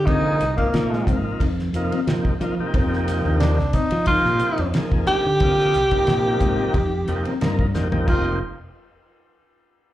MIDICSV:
0, 0, Header, 1, 7, 480
1, 0, Start_track
1, 0, Tempo, 666667
1, 55, Time_signature, 4, 2, 24, 8
1, 7153, End_track
2, 0, Start_track
2, 0, Title_t, "Tenor saxophone"
2, 0, Program_c, 0, 66
2, 41, Note_on_c, 0, 63, 92
2, 404, Note_off_c, 0, 63, 0
2, 408, Note_on_c, 0, 58, 75
2, 868, Note_off_c, 0, 58, 0
2, 2445, Note_on_c, 0, 62, 80
2, 2693, Note_on_c, 0, 63, 90
2, 2704, Note_off_c, 0, 62, 0
2, 2927, Note_off_c, 0, 63, 0
2, 2931, Note_on_c, 0, 65, 100
2, 3387, Note_off_c, 0, 65, 0
2, 3652, Note_on_c, 0, 67, 123
2, 5306, Note_off_c, 0, 67, 0
2, 5819, Note_on_c, 0, 65, 83
2, 6042, Note_off_c, 0, 65, 0
2, 7153, End_track
3, 0, Start_track
3, 0, Title_t, "Clean electric guitar"
3, 0, Program_c, 1, 27
3, 48, Note_on_c, 1, 60, 91
3, 198, Note_off_c, 1, 60, 0
3, 418, Note_on_c, 1, 62, 62
3, 568, Note_off_c, 1, 62, 0
3, 772, Note_on_c, 1, 60, 72
3, 921, Note_off_c, 1, 60, 0
3, 1014, Note_on_c, 1, 63, 76
3, 1163, Note_off_c, 1, 63, 0
3, 1382, Note_on_c, 1, 60, 70
3, 1531, Note_off_c, 1, 60, 0
3, 1730, Note_on_c, 1, 62, 81
3, 1881, Note_off_c, 1, 62, 0
3, 1980, Note_on_c, 1, 60, 102
3, 2128, Note_off_c, 1, 60, 0
3, 2346, Note_on_c, 1, 62, 62
3, 2494, Note_off_c, 1, 62, 0
3, 2697, Note_on_c, 1, 60, 80
3, 2846, Note_off_c, 1, 60, 0
3, 2935, Note_on_c, 1, 63, 79
3, 3084, Note_off_c, 1, 63, 0
3, 3304, Note_on_c, 1, 60, 67
3, 3453, Note_off_c, 1, 60, 0
3, 3659, Note_on_c, 1, 62, 83
3, 3808, Note_off_c, 1, 62, 0
3, 3895, Note_on_c, 1, 60, 94
3, 4045, Note_off_c, 1, 60, 0
3, 4264, Note_on_c, 1, 62, 67
3, 4413, Note_off_c, 1, 62, 0
3, 4620, Note_on_c, 1, 60, 72
3, 4768, Note_off_c, 1, 60, 0
3, 4863, Note_on_c, 1, 63, 90
3, 5010, Note_off_c, 1, 63, 0
3, 5231, Note_on_c, 1, 60, 78
3, 5377, Note_off_c, 1, 60, 0
3, 5584, Note_on_c, 1, 62, 85
3, 5730, Note_off_c, 1, 62, 0
3, 5829, Note_on_c, 1, 65, 88
3, 5970, Note_off_c, 1, 65, 0
3, 7153, End_track
4, 0, Start_track
4, 0, Title_t, "Tonewheel organ"
4, 0, Program_c, 2, 16
4, 54, Note_on_c, 2, 48, 85
4, 55, Note_on_c, 2, 53, 73
4, 56, Note_on_c, 2, 58, 72
4, 58, Note_on_c, 2, 68, 89
4, 59, Note_on_c, 2, 75, 69
4, 324, Note_off_c, 2, 48, 0
4, 324, Note_off_c, 2, 53, 0
4, 325, Note_off_c, 2, 58, 0
4, 326, Note_off_c, 2, 68, 0
4, 326, Note_off_c, 2, 75, 0
4, 421, Note_on_c, 2, 58, 72
4, 423, Note_on_c, 2, 48, 86
4, 423, Note_on_c, 2, 53, 75
4, 426, Note_on_c, 2, 65, 90
4, 428, Note_on_c, 2, 63, 75
4, 1041, Note_off_c, 2, 58, 0
4, 1042, Note_off_c, 2, 48, 0
4, 1042, Note_off_c, 2, 53, 0
4, 1043, Note_off_c, 2, 65, 0
4, 1045, Note_off_c, 2, 63, 0
4, 1259, Note_on_c, 2, 53, 80
4, 1264, Note_on_c, 2, 48, 99
4, 1266, Note_on_c, 2, 58, 83
4, 1268, Note_on_c, 2, 63, 87
4, 1268, Note_on_c, 2, 65, 99
4, 1441, Note_off_c, 2, 53, 0
4, 1443, Note_off_c, 2, 48, 0
4, 1444, Note_off_c, 2, 58, 0
4, 1445, Note_off_c, 2, 63, 0
4, 1445, Note_off_c, 2, 65, 0
4, 1499, Note_on_c, 2, 48, 85
4, 1500, Note_on_c, 2, 53, 81
4, 1509, Note_on_c, 2, 58, 79
4, 1509, Note_on_c, 2, 63, 78
4, 1512, Note_on_c, 2, 67, 93
4, 1681, Note_off_c, 2, 48, 0
4, 1681, Note_off_c, 2, 53, 0
4, 1686, Note_off_c, 2, 58, 0
4, 1686, Note_off_c, 2, 63, 0
4, 1687, Note_off_c, 2, 67, 0
4, 1738, Note_on_c, 2, 48, 84
4, 1738, Note_on_c, 2, 53, 69
4, 1740, Note_on_c, 2, 58, 81
4, 1741, Note_on_c, 2, 63, 78
4, 1744, Note_on_c, 2, 65, 94
4, 1833, Note_off_c, 2, 48, 0
4, 1833, Note_off_c, 2, 53, 0
4, 1834, Note_off_c, 2, 58, 0
4, 1834, Note_off_c, 2, 63, 0
4, 1836, Note_off_c, 2, 65, 0
4, 1870, Note_on_c, 2, 53, 93
4, 1870, Note_on_c, 2, 58, 86
4, 1871, Note_on_c, 2, 48, 97
4, 1873, Note_on_c, 2, 63, 91
4, 1874, Note_on_c, 2, 67, 112
4, 2581, Note_off_c, 2, 48, 0
4, 2581, Note_off_c, 2, 53, 0
4, 2581, Note_off_c, 2, 58, 0
4, 2582, Note_off_c, 2, 63, 0
4, 2583, Note_off_c, 2, 67, 0
4, 2936, Note_on_c, 2, 48, 78
4, 2939, Note_on_c, 2, 53, 70
4, 2939, Note_on_c, 2, 58, 65
4, 2940, Note_on_c, 2, 63, 74
4, 2943, Note_on_c, 2, 67, 92
4, 3302, Note_off_c, 2, 48, 0
4, 3303, Note_off_c, 2, 53, 0
4, 3303, Note_off_c, 2, 58, 0
4, 3303, Note_off_c, 2, 63, 0
4, 3305, Note_off_c, 2, 67, 0
4, 3416, Note_on_c, 2, 48, 77
4, 3418, Note_on_c, 2, 53, 72
4, 3420, Note_on_c, 2, 63, 67
4, 3423, Note_on_c, 2, 68, 91
4, 3424, Note_on_c, 2, 58, 75
4, 3781, Note_off_c, 2, 48, 0
4, 3782, Note_off_c, 2, 53, 0
4, 3784, Note_off_c, 2, 63, 0
4, 3785, Note_off_c, 2, 58, 0
4, 3785, Note_off_c, 2, 68, 0
4, 3900, Note_on_c, 2, 48, 87
4, 3901, Note_on_c, 2, 53, 77
4, 3904, Note_on_c, 2, 58, 74
4, 3904, Note_on_c, 2, 75, 82
4, 3911, Note_on_c, 2, 65, 97
4, 4169, Note_off_c, 2, 48, 0
4, 4170, Note_off_c, 2, 53, 0
4, 4171, Note_off_c, 2, 58, 0
4, 4171, Note_off_c, 2, 75, 0
4, 4175, Note_off_c, 2, 65, 0
4, 4258, Note_on_c, 2, 48, 97
4, 4260, Note_on_c, 2, 53, 94
4, 4262, Note_on_c, 2, 63, 89
4, 4264, Note_on_c, 2, 58, 88
4, 4264, Note_on_c, 2, 67, 112
4, 4880, Note_off_c, 2, 48, 0
4, 4881, Note_off_c, 2, 53, 0
4, 4882, Note_off_c, 2, 63, 0
4, 4883, Note_off_c, 2, 58, 0
4, 4883, Note_off_c, 2, 67, 0
4, 5099, Note_on_c, 2, 48, 95
4, 5100, Note_on_c, 2, 58, 91
4, 5101, Note_on_c, 2, 53, 84
4, 5102, Note_on_c, 2, 67, 103
4, 5105, Note_on_c, 2, 63, 89
4, 5281, Note_off_c, 2, 48, 0
4, 5281, Note_off_c, 2, 58, 0
4, 5282, Note_off_c, 2, 53, 0
4, 5282, Note_off_c, 2, 67, 0
4, 5284, Note_off_c, 2, 63, 0
4, 5336, Note_on_c, 2, 58, 78
4, 5337, Note_on_c, 2, 48, 93
4, 5337, Note_on_c, 2, 70, 105
4, 5338, Note_on_c, 2, 63, 80
4, 5339, Note_on_c, 2, 53, 85
4, 5519, Note_off_c, 2, 58, 0
4, 5520, Note_off_c, 2, 48, 0
4, 5520, Note_off_c, 2, 63, 0
4, 5520, Note_off_c, 2, 70, 0
4, 5521, Note_off_c, 2, 53, 0
4, 5573, Note_on_c, 2, 48, 89
4, 5574, Note_on_c, 2, 53, 72
4, 5575, Note_on_c, 2, 58, 85
4, 5578, Note_on_c, 2, 63, 83
4, 5579, Note_on_c, 2, 67, 95
4, 5671, Note_off_c, 2, 48, 0
4, 5671, Note_off_c, 2, 53, 0
4, 5671, Note_off_c, 2, 58, 0
4, 5673, Note_off_c, 2, 63, 0
4, 5673, Note_off_c, 2, 67, 0
4, 5699, Note_on_c, 2, 58, 88
4, 5703, Note_on_c, 2, 67, 116
4, 5704, Note_on_c, 2, 48, 94
4, 5704, Note_on_c, 2, 63, 97
4, 5705, Note_on_c, 2, 53, 90
4, 5807, Note_off_c, 2, 48, 0
4, 5807, Note_off_c, 2, 53, 0
4, 5808, Note_off_c, 2, 67, 0
4, 5809, Note_off_c, 2, 63, 0
4, 5811, Note_off_c, 2, 58, 0
4, 5815, Note_on_c, 2, 53, 81
4, 5816, Note_on_c, 2, 48, 87
4, 5816, Note_on_c, 2, 67, 98
4, 5818, Note_on_c, 2, 63, 75
4, 5820, Note_on_c, 2, 58, 81
4, 6040, Note_off_c, 2, 48, 0
4, 6040, Note_off_c, 2, 53, 0
4, 6040, Note_off_c, 2, 67, 0
4, 6041, Note_off_c, 2, 63, 0
4, 6042, Note_off_c, 2, 58, 0
4, 7153, End_track
5, 0, Start_track
5, 0, Title_t, "Fingered electric bass"
5, 0, Program_c, 3, 33
5, 0, Note_on_c, 3, 50, 81
5, 277, Note_off_c, 3, 50, 0
5, 296, Note_on_c, 3, 36, 80
5, 417, Note_off_c, 3, 36, 0
5, 533, Note_on_c, 3, 46, 95
5, 763, Note_off_c, 3, 46, 0
5, 772, Note_on_c, 3, 44, 79
5, 895, Note_off_c, 3, 44, 0
5, 1011, Note_on_c, 3, 41, 88
5, 1242, Note_off_c, 3, 41, 0
5, 1247, Note_on_c, 3, 41, 76
5, 1373, Note_off_c, 3, 41, 0
5, 1492, Note_on_c, 3, 53, 91
5, 1616, Note_off_c, 3, 53, 0
5, 1734, Note_on_c, 3, 53, 81
5, 1857, Note_off_c, 3, 53, 0
5, 1975, Note_on_c, 3, 41, 91
5, 2326, Note_off_c, 3, 41, 0
5, 2341, Note_on_c, 3, 39, 89
5, 2572, Note_off_c, 3, 39, 0
5, 2585, Note_on_c, 3, 36, 86
5, 2687, Note_off_c, 3, 36, 0
5, 2823, Note_on_c, 3, 53, 79
5, 3053, Note_off_c, 3, 53, 0
5, 3063, Note_on_c, 3, 46, 102
5, 3173, Note_off_c, 3, 46, 0
5, 3303, Note_on_c, 3, 41, 84
5, 3413, Note_off_c, 3, 41, 0
5, 3540, Note_on_c, 3, 41, 86
5, 3651, Note_off_c, 3, 41, 0
5, 3790, Note_on_c, 3, 50, 86
5, 4123, Note_off_c, 3, 50, 0
5, 4142, Note_on_c, 3, 36, 90
5, 4262, Note_off_c, 3, 36, 0
5, 4376, Note_on_c, 3, 46, 95
5, 4606, Note_off_c, 3, 46, 0
5, 4614, Note_on_c, 3, 44, 77
5, 4737, Note_off_c, 3, 44, 0
5, 4854, Note_on_c, 3, 41, 89
5, 5084, Note_off_c, 3, 41, 0
5, 5100, Note_on_c, 3, 41, 84
5, 5220, Note_off_c, 3, 41, 0
5, 5343, Note_on_c, 3, 43, 94
5, 5557, Note_off_c, 3, 43, 0
5, 5589, Note_on_c, 3, 41, 78
5, 5800, Note_off_c, 3, 41, 0
5, 5819, Note_on_c, 3, 29, 98
5, 6042, Note_off_c, 3, 29, 0
5, 7153, End_track
6, 0, Start_track
6, 0, Title_t, "Muted fingered electric bass strokes"
6, 1619, Note_on_c, 9, 29, 39
6, 1691, Note_off_c, 9, 29, 0
6, 1863, Note_on_c, 9, 29, 31
6, 1935, Note_off_c, 9, 29, 0
6, 2691, Note_on_c, 9, 29, 36
6, 2763, Note_off_c, 9, 29, 0
6, 3659, Note_on_c, 9, 29, 34
6, 3731, Note_off_c, 9, 29, 0
6, 7153, End_track
7, 0, Start_track
7, 0, Title_t, "Drums"
7, 49, Note_on_c, 9, 36, 106
7, 52, Note_on_c, 9, 51, 71
7, 121, Note_off_c, 9, 36, 0
7, 124, Note_off_c, 9, 51, 0
7, 292, Note_on_c, 9, 44, 89
7, 292, Note_on_c, 9, 51, 57
7, 300, Note_on_c, 9, 38, 32
7, 364, Note_off_c, 9, 44, 0
7, 364, Note_off_c, 9, 51, 0
7, 372, Note_off_c, 9, 38, 0
7, 417, Note_on_c, 9, 36, 69
7, 417, Note_on_c, 9, 51, 51
7, 489, Note_off_c, 9, 36, 0
7, 489, Note_off_c, 9, 51, 0
7, 530, Note_on_c, 9, 51, 70
7, 539, Note_on_c, 9, 38, 99
7, 602, Note_off_c, 9, 51, 0
7, 611, Note_off_c, 9, 38, 0
7, 671, Note_on_c, 9, 38, 28
7, 743, Note_off_c, 9, 38, 0
7, 770, Note_on_c, 9, 36, 85
7, 775, Note_on_c, 9, 44, 86
7, 775, Note_on_c, 9, 51, 59
7, 842, Note_off_c, 9, 36, 0
7, 847, Note_off_c, 9, 44, 0
7, 847, Note_off_c, 9, 51, 0
7, 1010, Note_on_c, 9, 36, 75
7, 1013, Note_on_c, 9, 51, 76
7, 1082, Note_off_c, 9, 36, 0
7, 1085, Note_off_c, 9, 51, 0
7, 1146, Note_on_c, 9, 38, 31
7, 1218, Note_off_c, 9, 38, 0
7, 1252, Note_on_c, 9, 44, 77
7, 1252, Note_on_c, 9, 51, 55
7, 1324, Note_off_c, 9, 44, 0
7, 1324, Note_off_c, 9, 51, 0
7, 1384, Note_on_c, 9, 51, 56
7, 1456, Note_off_c, 9, 51, 0
7, 1493, Note_on_c, 9, 51, 78
7, 1502, Note_on_c, 9, 38, 113
7, 1565, Note_off_c, 9, 51, 0
7, 1574, Note_off_c, 9, 38, 0
7, 1619, Note_on_c, 9, 36, 87
7, 1691, Note_off_c, 9, 36, 0
7, 1733, Note_on_c, 9, 44, 73
7, 1733, Note_on_c, 9, 51, 51
7, 1805, Note_off_c, 9, 44, 0
7, 1805, Note_off_c, 9, 51, 0
7, 1972, Note_on_c, 9, 51, 84
7, 1973, Note_on_c, 9, 36, 106
7, 2044, Note_off_c, 9, 51, 0
7, 2045, Note_off_c, 9, 36, 0
7, 2111, Note_on_c, 9, 38, 31
7, 2183, Note_off_c, 9, 38, 0
7, 2216, Note_on_c, 9, 44, 88
7, 2216, Note_on_c, 9, 51, 71
7, 2224, Note_on_c, 9, 38, 29
7, 2288, Note_off_c, 9, 44, 0
7, 2288, Note_off_c, 9, 51, 0
7, 2296, Note_off_c, 9, 38, 0
7, 2450, Note_on_c, 9, 51, 84
7, 2458, Note_on_c, 9, 38, 109
7, 2522, Note_off_c, 9, 51, 0
7, 2530, Note_off_c, 9, 38, 0
7, 2586, Note_on_c, 9, 38, 30
7, 2658, Note_off_c, 9, 38, 0
7, 2686, Note_on_c, 9, 44, 83
7, 2686, Note_on_c, 9, 51, 71
7, 2691, Note_on_c, 9, 36, 83
7, 2758, Note_off_c, 9, 44, 0
7, 2758, Note_off_c, 9, 51, 0
7, 2763, Note_off_c, 9, 36, 0
7, 2812, Note_on_c, 9, 51, 69
7, 2884, Note_off_c, 9, 51, 0
7, 2921, Note_on_c, 9, 51, 83
7, 2930, Note_on_c, 9, 36, 87
7, 2993, Note_off_c, 9, 51, 0
7, 3002, Note_off_c, 9, 36, 0
7, 3065, Note_on_c, 9, 38, 32
7, 3137, Note_off_c, 9, 38, 0
7, 3163, Note_on_c, 9, 44, 88
7, 3163, Note_on_c, 9, 51, 66
7, 3235, Note_off_c, 9, 44, 0
7, 3235, Note_off_c, 9, 51, 0
7, 3295, Note_on_c, 9, 51, 62
7, 3367, Note_off_c, 9, 51, 0
7, 3410, Note_on_c, 9, 51, 85
7, 3419, Note_on_c, 9, 38, 107
7, 3482, Note_off_c, 9, 51, 0
7, 3491, Note_off_c, 9, 38, 0
7, 3540, Note_on_c, 9, 36, 87
7, 3612, Note_off_c, 9, 36, 0
7, 3648, Note_on_c, 9, 44, 83
7, 3648, Note_on_c, 9, 51, 59
7, 3720, Note_off_c, 9, 44, 0
7, 3720, Note_off_c, 9, 51, 0
7, 3888, Note_on_c, 9, 51, 74
7, 3893, Note_on_c, 9, 36, 100
7, 3960, Note_off_c, 9, 51, 0
7, 3965, Note_off_c, 9, 36, 0
7, 4029, Note_on_c, 9, 38, 34
7, 4101, Note_off_c, 9, 38, 0
7, 4132, Note_on_c, 9, 44, 92
7, 4132, Note_on_c, 9, 51, 60
7, 4141, Note_on_c, 9, 38, 34
7, 4204, Note_off_c, 9, 44, 0
7, 4204, Note_off_c, 9, 51, 0
7, 4213, Note_off_c, 9, 38, 0
7, 4256, Note_on_c, 9, 51, 55
7, 4259, Note_on_c, 9, 36, 72
7, 4328, Note_off_c, 9, 51, 0
7, 4331, Note_off_c, 9, 36, 0
7, 4369, Note_on_c, 9, 51, 77
7, 4377, Note_on_c, 9, 38, 104
7, 4441, Note_off_c, 9, 51, 0
7, 4449, Note_off_c, 9, 38, 0
7, 4610, Note_on_c, 9, 44, 89
7, 4610, Note_on_c, 9, 51, 59
7, 4613, Note_on_c, 9, 36, 91
7, 4682, Note_off_c, 9, 44, 0
7, 4682, Note_off_c, 9, 51, 0
7, 4685, Note_off_c, 9, 36, 0
7, 4853, Note_on_c, 9, 51, 71
7, 4854, Note_on_c, 9, 36, 83
7, 4925, Note_off_c, 9, 51, 0
7, 4926, Note_off_c, 9, 36, 0
7, 5094, Note_on_c, 9, 44, 78
7, 5094, Note_on_c, 9, 51, 55
7, 5166, Note_off_c, 9, 44, 0
7, 5166, Note_off_c, 9, 51, 0
7, 5222, Note_on_c, 9, 51, 60
7, 5294, Note_off_c, 9, 51, 0
7, 5336, Note_on_c, 9, 51, 76
7, 5345, Note_on_c, 9, 38, 104
7, 5408, Note_off_c, 9, 51, 0
7, 5417, Note_off_c, 9, 38, 0
7, 5463, Note_on_c, 9, 36, 87
7, 5535, Note_off_c, 9, 36, 0
7, 5575, Note_on_c, 9, 44, 82
7, 5584, Note_on_c, 9, 38, 58
7, 5647, Note_off_c, 9, 44, 0
7, 5656, Note_off_c, 9, 38, 0
7, 5704, Note_on_c, 9, 43, 83
7, 5776, Note_off_c, 9, 43, 0
7, 5815, Note_on_c, 9, 49, 78
7, 5816, Note_on_c, 9, 36, 94
7, 5887, Note_off_c, 9, 49, 0
7, 5888, Note_off_c, 9, 36, 0
7, 7153, End_track
0, 0, End_of_file